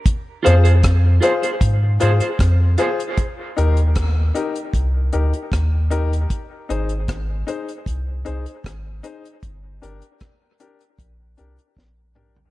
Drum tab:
HH |x-xxx-xxx-xxx-xx|x-xxx-xxx-xxx-xx|x-xxx-xxx-xxx-xx|x-xxx-xxx-xx----|
SD |----r-------r---|----r-------r---|----r-------r---|----r-------o---|
T2 |----------------|----------------|----------------|--------------o-|
FT |----------------|----------------|----------------|---------------o|
BD |o---o---o---o---|o---o---o---o---|o---o---o---o---|o---o---o---o---|